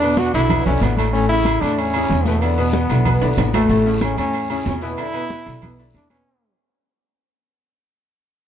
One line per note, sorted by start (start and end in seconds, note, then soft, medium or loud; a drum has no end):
0.00 0.29 E2 loud
0.00 0.29 B2 medium
0.00 0.29 B3 medium
0.00 0.19 D4 loud
0.00 0.29 B4 medium
0.00 high conga soft
0.00 low agogo medium
0.00 maracas soft
0.17 0.34 F#4 loud
0.17 high conga loud
0.17 short guiro medium
0.17 maracas soft
0.33 0.64 B1 medium
0.33 0.47 D3 medium
0.33 0.48 D4 medium
0.33 0.64 E4 loud
0.33 0.48 E4 medium
0.33 high conga soft
0.33 low agogo medium
0.33 short guiro medium
0.33 maracas medium
0.50 0.63 B2 medium
0.50 0.64 B3 medium
0.50 0.64 B4 medium
0.50 high conga soft
0.50 low conga loud
0.50 low agogo loud
0.50 long guiro medium
0.50 maracas medium
0.66 0.81 B1 medium
0.66 0.93 D3 medium
0.66 0.81 C#4 loud
0.66 0.93 D4 medium
0.66 0.93 E4 medium
0.66 high conga soft
0.66 low conga medium
0.66 maracas soft
0.81 1.56 A1 loud
0.81 0.97 B3 loud
0.81 high conga medium
0.81 low timbale medium
0.81 low agogo medium
0.81 short guiro medium
0.81 maracas soft
0.97 1.11 A2 medium
0.97 1.12 A3 medium
0.97 1.12 A4 medium
0.97 high conga medium
0.97 low agogo loud
0.97 short guiro medium
0.97 maracas medium
1.13 1.27 A2 loud
1.13 1.28 A3 medium
1.13 1.28 C#4 loud
1.13 1.28 A4 medium
1.13 high conga soft
1.13 long guiro medium
1.13 maracas loud
1.29 1.57 C#3 medium
1.29 1.57 C#4 medium
1.29 1.63 E4 loud
1.29 1.57 E4 medium
1.29 high conga soft
1.29 maracas soft
1.45 high conga loud
1.45 low agogo loud
1.45 short guiro medium
1.45 maracas soft
1.61 2.06 E2 medium
1.61 1.88 A2 medium
1.61 1.89 A3 medium
1.61 1.80 D4 loud
1.61 1.89 A4 medium
1.61 high conga soft
1.61 low agogo medium
1.61 short guiro medium
1.61 maracas medium
1.77 2.28 C#4 loud
1.77 high conga soft
1.77 low agogo medium
1.77 long guiro medium
1.77 maracas loud
1.94 2.21 C#3 medium
1.94 2.21 C#4 medium
1.94 2.21 E4 medium
1.94 high conga soft
1.94 low agogo loud
1.94 maracas soft
2.10 2.85 E2 loud
2.10 high conga medium
2.10 short guiro medium
2.10 maracas soft
2.25 2.40 B2 medium
2.25 2.45 A3 medium
2.25 2.40 B3 medium
2.25 2.40 B4 medium
2.25 high conga medium
2.25 short guiro medium
2.25 maracas medium
2.41 2.56 D3 medium
2.41 3.39 B3 medium
2.41 2.56 D4 medium
2.41 2.56 E4 medium
2.41 high conga soft
2.41 low agogo loud
2.41 long guiro medium
2.41 maracas medium
2.58 2.84 B2 loud
2.58 2.85 B3 medium
2.58 2.85 B4 medium
2.58 high conga soft
2.58 low agogo medium
2.58 maracas soft
2.73 high conga loud
2.73 short guiro medium
2.73 maracas soft
2.89 3.20 B1 loud
2.89 3.04 D3 medium
2.89 3.04 D4 medium
2.89 3.04 E4 medium
2.89 high conga soft
2.89 low agogo medium
2.89 short guiro medium
2.89 maracas medium
3.05 3.19 B2 medium
3.05 3.19 B3 medium
3.05 3.19 B4 medium
3.05 high conga soft
3.05 low conga medium
3.05 low agogo loud
3.05 long guiro medium
3.05 maracas medium
3.21 3.37 B1 medium
3.21 3.48 D3 medium
3.21 3.49 D4 medium
3.21 3.49 E4 medium
3.21 high conga soft
3.21 high timbale loud
3.21 maracas soft
3.37 3.66 A1 loud
3.37 3.54 B3 medium
3.37 high conga medium
3.37 high timbale loud
3.37 low agogo medium
3.37 short guiro medium
3.37 maracas soft
3.53 3.67 A2 medium
3.53 3.67 A3 medium
3.53 3.99 A3 medium
3.53 3.67 A4 medium
3.53 high conga medium
3.53 low timbale loud
3.53 low agogo loud
3.53 short guiro medium
3.53 maracas medium
3.69 4.14 A1 loud
3.69 3.83 A2 medium
3.69 3.84 A3 medium
3.69 3.84 A4 medium
3.69 long guiro medium
3.69 maracas loud
3.85 4.12 C#3 medium
3.85 4.12 C#4 medium
3.85 4.12 E4 medium
3.85 high conga soft
3.85 maracas soft
4.01 4.18 C#4 medium
4.01 high conga loud
4.01 low agogo loud
4.01 short guiro medium
4.01 maracas soft
4.17 4.62 E2 medium
4.17 4.45 A2 medium
4.17 4.45 A3 medium
4.17 4.49 C#4 loud
4.17 4.45 A4 medium
4.17 high conga soft
4.17 low agogo medium
4.17 short guiro medium
4.17 maracas medium
4.33 high conga soft
4.33 low agogo loud
4.33 long guiro medium
4.33 maracas medium
4.50 4.76 C#3 medium
4.50 4.76 C#4 medium
4.50 4.66 C#4 medium
4.50 4.77 E4 medium
4.50 high conga soft
4.50 low agogo loud
4.50 maracas soft
4.65 4.94 E2 loud
4.65 4.74 C#4 loud
4.65 high conga medium
4.65 low timbale medium
4.65 short guiro medium
4.65 maracas soft
4.81 4.95 B2 medium
4.81 4.95 B3 medium
4.81 5.75 E4 loud
4.81 4.95 B4 loud
4.81 short guiro medium
4.81 maracas medium
4.97 5.11 D3 medium
4.97 5.11 D4 medium
4.97 5.12 E4 medium
4.97 high conga soft
4.97 low agogo loud
4.97 long guiro medium
4.97 maracas loud
5.13 5.40 B2 medium
5.13 5.40 B3 loud
5.13 5.41 B4 medium
5.13 high conga soft
5.13 low agogo medium
5.13 maracas soft
5.29 high conga loud
5.29 short guiro medium
5.29 maracas soft
5.45 5.91 B1 medium
5.45 5.59 D3 medium
5.45 5.59 D4 medium
5.45 5.59 E4 medium
5.45 high conga soft
5.45 low agogo medium
5.45 short guiro medium
5.45 maracas medium
5.61 5.75 B2 medium
5.61 5.76 B3 medium
5.61 5.76 B4 medium
5.61 high conga soft
5.61 low conga loud
5.61 low agogo loud
5.61 long guiro medium
5.61 maracas loud
5.78 6.05 D3 medium
5.78 6.05 D4 medium
5.78 6.05 E4 medium
5.78 high conga soft
5.78 maracas soft
5.94 6.22 E2 medium
5.94 6.10 D4 loud
5.94 high conga medium
5.94 low agogo medium
5.94 short guiro medium
5.94 maracas soft
6.10 6.23 B2 medium
6.10 6.23 B3 medium
6.10 6.55 C#4 medium
6.10 6.24 B4 medium
6.10 high conga medium
6.10 low agogo loud
6.10 short guiro medium
6.10 maracas medium